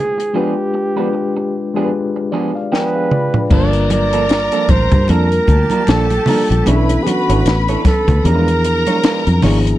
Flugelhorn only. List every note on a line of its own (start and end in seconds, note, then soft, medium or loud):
0.00 0.39 G#4 medium
0.37 1.94 G4 medium
2.74 3.48 B4 medium
3.53 3.89 D5 medium
3.92 4.72 D5 medium
4.70 5.12 C5 medium
5.10 5.91 A#4 loud
5.90 6.69 A4 medium
6.68 7.05 E4 medium
7.03 7.09 G#4 medium
7.07 7.61 F#4 medium
7.87 8.28 A4 medium
8.27 9.44 A#4 medium